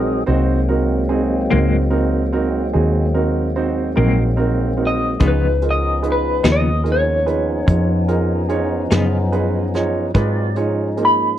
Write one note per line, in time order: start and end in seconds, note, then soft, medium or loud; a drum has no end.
0.00 0.24 A#1 medium
0.00 0.25 F#3 medium
0.00 0.24 G#3 medium
0.00 0.17 C4 medium
0.00 0.24 C4 medium
0.00 0.18 D#4 soft
0.00 0.18 F#4 medium
0.00 0.24 G#4 medium
0.00 0.18 A#4 medium
0.26 1.48 C2 medium
0.26 5.19 G#3 medium
0.26 5.19 A#3 medium
0.26 0.58 C4 medium
0.26 5.18 C4 medium
0.26 0.58 D#4 medium
0.26 0.58 F#4 medium
0.26 0.58 C5 medium
0.31 5.19 F#3 medium
0.69 1.00 C4 soft
0.69 1.00 D#4 soft
0.69 1.00 F#4 medium
0.69 1.00 A#4 medium
1.09 1.40 C4 medium
1.09 1.40 D#4 medium
1.09 1.41 F#4 soft
1.09 1.40 G#4 medium
1.50 2.72 C#2 medium
1.50 1.77 G#2 medium
1.50 1.76 F#3 medium
1.50 1.76 A#3 medium
1.50 1.81 C4 medium
1.50 1.76 C4 medium
1.50 1.82 D#4 medium
1.50 1.81 F#4 soft
1.50 1.81 A#4 medium
1.90 2.22 C4 medium
1.90 2.22 D#4 medium
1.90 2.22 F#4 medium
1.90 2.22 A#4 medium
2.32 2.64 C4 medium
2.32 2.64 D#4 soft
2.32 2.64 F#4 medium
2.32 2.64 A#4 medium
2.73 3.95 D#2 medium
2.73 3.05 C4 medium
2.73 3.05 D#4 medium
2.73 3.05 F#4 soft
2.73 3.05 G#4 medium
3.14 3.46 C4 soft
3.14 3.46 D#4 soft
3.14 3.46 F#4 soft
3.14 3.46 A#4 medium
3.56 3.87 C4 medium
3.56 3.87 D#4 soft
3.56 3.87 F#4 medium
3.56 3.87 C5 medium
3.95 5.18 A#1 medium
3.95 4.23 G#2 soft
3.95 4.23 F#3 medium
3.95 4.22 A#3 medium
3.95 4.28 C4 medium
3.95 4.22 C4 medium
3.95 4.28 D#4 medium
3.95 4.28 F#4 medium
3.95 4.28 A#4 medium
4.36 4.69 C4 medium
4.36 4.69 D#4 medium
4.36 4.69 F#4 medium
4.36 4.69 A#4 medium
4.77 5.10 C4 medium
4.77 5.10 D#4 soft
4.77 5.10 F#4 soft
4.77 5.10 A#4 soft
4.87 5.24 D#5 medium
5.20 6.41 C#2 medium
5.20 5.45 C#3 medium
5.20 5.46 F3 medium
5.20 10.12 F3 medium
5.20 5.46 B3 medium
5.20 10.12 B3 medium
5.20 10.12 C#4 medium
5.20 5.52 D#4 medium
5.20 10.12 D#4 medium
5.20 5.47 D#4 medium
5.20 5.52 F4 medium
5.20 5.52 G#4 medium
5.20 5.51 B4 medium
5.20 kick medium
5.20 closed hi-hat medium
5.28 5.65 B4 medium
5.62 5.93 D#4 soft
5.62 5.93 F4 soft
5.62 5.93 G#4 soft
5.62 5.94 A#4 soft
5.62 closed hi-hat medium
5.71 6.07 D#5 medium
6.02 6.34 D#4 medium
6.02 6.34 F4 soft
6.02 6.34 G#4 soft
6.02 6.34 B4 medium
6.02 closed hi-hat medium
6.12 6.48 B4 medium
6.43 7.64 D#2 medium
6.43 6.70 C#3 soft
6.43 6.70 F3 medium
6.43 6.70 B3 medium
6.43 6.75 D#4 medium
6.43 6.69 D#4 medium
6.43 6.75 F4 soft
6.43 6.75 G#4 soft
6.43 6.75 B4 medium
6.43 snare loud
6.43 closed hi-hat medium
6.52 6.89 D#5 medium
6.83 7.16 D#4 soft
6.83 7.16 F4 soft
6.83 7.16 G#4 soft
6.83 7.16 A#4 medium
6.83 closed hi-hat medium
6.92 9.32 C#5 medium
7.26 7.58 D#4 soft
7.26 7.58 F4 soft
7.26 7.58 G#4 soft
7.26 7.58 B4 medium
7.26 closed hi-hat medium
7.66 8.88 F2 medium
7.66 7.98 D#4 soft
7.66 7.98 F4 soft
7.66 7.98 G#4 soft
7.66 7.98 C#5 medium
7.66 kick medium
7.66 closed hi-hat medium
8.08 8.40 D#4 medium
8.08 8.40 F4 soft
8.08 8.40 G#4 soft
8.08 8.40 A#4 medium
8.08 closed hi-hat medium
8.49 8.81 D#4 medium
8.49 8.81 F4 medium
8.49 8.81 G#4 medium
8.49 8.81 C#5 medium
8.49 closed hi-hat medium
8.91 10.11 F#2 medium
8.91 9.17 C#3 medium
8.91 9.17 F3 medium
8.91 9.17 B3 medium
8.91 9.16 D#4 medium
8.91 9.23 D#4 medium
8.91 9.23 F4 medium
8.91 9.22 G#4 medium
8.91 9.23 B4 medium
8.91 snare loud
8.91 closed hi-hat medium
9.32 9.64 D#4 medium
9.32 9.64 F4 medium
9.32 9.64 G#4 medium
9.32 9.64 B4 medium
9.32 closed hi-hat soft
9.74 10.05 D#4 medium
9.74 10.05 F4 medium
9.74 10.05 G#4 medium
9.74 10.05 C#5 medium
9.74 snare soft
9.74 closed hi-hat soft
10.14 11.35 G#2 medium
10.14 10.57 F#3 medium
10.14 10.57 C4 medium
10.14 10.55 D#4 medium
10.14 10.46 D#4 medium
10.14 10.46 F4 medium
10.14 10.46 G#4 medium
10.14 10.46 B4 medium
10.14 10.56 D5 medium
10.14 kick loud
10.14 closed hi-hat medium
10.55 11.39 F3 medium
10.55 11.39 G#3 medium
10.55 11.39 C#4 medium
10.55 11.39 D#4 medium
10.55 10.88 D#4 medium
10.55 10.87 F4 medium
10.55 10.88 G#4 soft
10.55 10.87 C#5 medium
10.55 closed hi-hat soft
10.97 11.28 A#3 medium
10.97 11.28 D#4 soft
10.97 11.29 F4 soft
10.97 11.28 G#4 soft
10.97 closed hi-hat medium
11.05 11.39 B5 medium